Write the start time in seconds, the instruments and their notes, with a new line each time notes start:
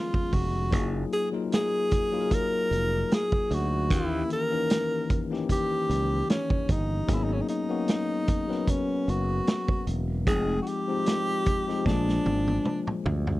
Already playing: tine electric piano D#3 F3 G#3 B3 C#4 G#4, tenor saxophone F4
0.14 kick
0.33 fingered electric bass F1, tenor saxophone F#4, kick, open hi-hat
0.71 fingered electric bass F#1, tine electric piano F#3 A#3 D#4 F4 G#4, kick, closed hi-hat
1.12 tenor saxophone G#4, closed hi-hat
1.32 tine electric piano F#3 A#3 D#4 F4 A#4
1.52 tenor saxophone G#4, snare, closed hi-hat
1.91 kick, closed hi-hat
2.12 tine electric piano F#3 A#3 D#4 F4 G#4
2.21 tine electric piano A#4
2.31 tenor saxophone A#4, kick, closed hi-hat
2.71 fingered electric bass F1, closed hi-hat
3.11 tenor saxophone G#4, snare, closed hi-hat
3.32 kick
3.51 fingered electric bass D2, tenor saxophone F#4, closed hi-hat
3.89 fingered electric bass D#2, tine electric piano D#3 E3 A#3 C#4 G4, kick, closed hi-hat
3.93 tenor saxophone E4
4.30 tenor saxophone A#4, closed hi-hat
4.50 tine electric piano E3 A#3 C#4 D#4 A#4
4.70 snare, closed hi-hat
5.10 kick, closed hi-hat
5.30 tine electric piano E3 A#3 C#4 D#4 G4, snare
5.49 tenor saxophone G4, kick, closed hi-hat
5.89 fingered electric bass C#2, closed hi-hat
6.30 tenor saxophone C#4, snare, closed hi-hat
6.50 kick
6.69 fingered electric bass G1, tenor saxophone D#4, kick, closed hi-hat
7.07 fingered electric bass G#1, tine electric piano F#3 A#3 B3 C#4 G#4, kick, closed hi-hat
7.14 tenor saxophone E4
7.24 tenor saxophone D#4
7.33 tenor saxophone C#4
7.41 tenor saxophone D#4
7.48 tenor saxophone D#4, closed hi-hat
7.69 tine electric piano F#3 A#3 B3 C#4 F#4
7.88 snare, closed hi-hat
8.28 kick, closed hi-hat
8.48 tine electric piano F#3 B3 C#4 A#4 B4, snare
8.68 tenor saxophone C#4, kick, closed hi-hat
9.08 fingered electric bass F#1, tenor saxophone F#4, closed hi-hat
9.47 snare, closed hi-hat
9.68 kick
9.87 fingered electric bass E1, closed hi-hat
10.27 fingered electric bass F1, tine electric piano F3 G#3 C4 D#4 G5, tenor saxophone G#4, kick, closed hi-hat
10.63 tenor saxophone F#4
10.67 tenor saxophone G4, closed hi-hat
10.88 tine electric piano F3 G#3 C4 D#4 G4
11.06 snare, closed hi-hat
11.46 kick, closed hi-hat
11.68 tine electric piano F3 G#3 C4 D#4 G4, snare
11.85 fingered electric bass A#1, tine electric piano F3 G#3 A#3 D4 G#4, tenor saxophone D4, kick, snare
12.09 snare
12.26 fingered electric bass G#1, high tom
12.47 high tom
12.65 mid tom
12.87 mid tom
13.06 fingered electric bass D2, floor tom
13.27 floor tom